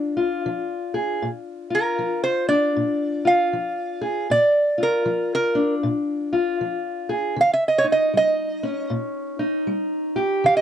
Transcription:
Already playing: steel-string acoustic guitar A#2 D4 F4
0.17 steel-string acoustic guitar F4
0.46 steel-string acoustic guitar F3
0.94 steel-string acoustic guitar G#4
1.22 steel-string acoustic guitar A#2
1.70 steel-string acoustic guitar F4
1.75 resonator guitar played with a steel bar A#4
1.99 steel-string acoustic guitar F3
2.24 resonator guitar played with a steel bar C5
2.48 steel-string acoustic guitar D4, resonator guitar played with a steel bar D5
2.76 steel-string acoustic guitar A#2
3.25 steel-string acoustic guitar F4, resonator guitar played with a steel bar F5
3.53 steel-string acoustic guitar F3
4.01 steel-string acoustic guitar G#4
4.30 steel-string acoustic guitar A#2, resonator guitar played with a steel bar D5
4.78 steel-string acoustic guitar F4
4.83 resonator guitar played with a steel bar A#4
5.05 steel-string acoustic guitar F3
5.35 resonator guitar played with a steel bar A#4
5.55 steel-string acoustic guitar D4
5.83 steel-string acoustic guitar A#2
6.33 steel-string acoustic guitar F4
6.61 steel-string acoustic guitar F3
7.09 steel-string acoustic guitar G#4
7.36 steel-string acoustic guitar D#3
7.41 resonator guitar played with a steel bar F5
7.53 resonator guitar played with a steel bar E5
7.68 resonator guitar played with a steel bar D#5
7.78 resonator guitar played with a steel bar C#5
7.84 steel-string acoustic guitar D#4
7.92 resonator guitar played with a steel bar D#5
8.14 steel-string acoustic guitar G3, resonator guitar played with a steel bar D#5
8.63 steel-string acoustic guitar C#4
8.90 steel-string acoustic guitar A#2
9.39 steel-string acoustic guitar D#4
9.67 steel-string acoustic guitar G3
10.16 steel-string acoustic guitar G4
10.44 steel-string acoustic guitar D#3, resonator guitar played with a steel bar F5
10.57 resonator guitar played with a steel bar D#5

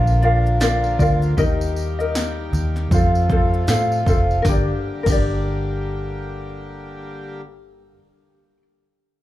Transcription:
Already playing: fingered electric bass A#1, harmonium D3 F3 A#3 F4, ukulele F4 A#4 F5
0.07 tambourine
0.22 ukulele F4 A#4 D5 F5, shaker
0.46 shaker
0.60 ukulele F4 A#4 D5 F5, snare, tambourine, shaker
0.84 tambourine
0.99 fingered electric bass D2, ukulele F4 A#4 D5 F5, kick, tambourine, shaker
1.22 tambourine, shaker
1.37 fingered electric bass D#2, harmonium D#3 G3 G4, ukulele D#4 G4 A#4 D#5, kick, tambourine, shaker
1.61 tambourine
1.76 tambourine, shaker
1.99 ukulele D#4 A#4 D#5, shaker
2.15 snare, tambourine, shaker
2.53 fingered electric bass D#2, tambourine, shaker
2.76 snare, shaker
2.90 fingered electric bass F2, harmonium C3 F3 A3 F4, ukulele F4 A4 C5, kick, tambourine, shaker
2.94 ukulele F5
3.15 tambourine
3.29 ukulele F4 A4 C5 F5, kick, shaker
3.54 shaker
3.67 fingered electric bass A2, ukulele F4 A4 C5 F5, snare, tambourine, shaker
3.92 tambourine
4.06 fingered electric bass F1, ukulele F4 A4 C5 F5, kick, tambourine, shaker
4.31 tambourine
4.42 fingered electric bass G1, harmonium D3 G3 A#3 G4, ukulele D4 A#4, kick, snare, tambourine
4.49 ukulele G4 D5
5.03 fingered electric bass G1, ukulele D4 A#4, kick, crash, tambourine
5.10 ukulele G4 D5

